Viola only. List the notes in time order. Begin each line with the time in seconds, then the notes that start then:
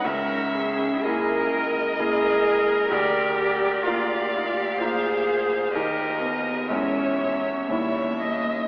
0.05 A#4
0.54 G#4
1.05 G#4
1.53 A#4
3.85 D5
4.80 C5
5.75 A#4
6.69 C#5
7.69 C#5
8.21 D#5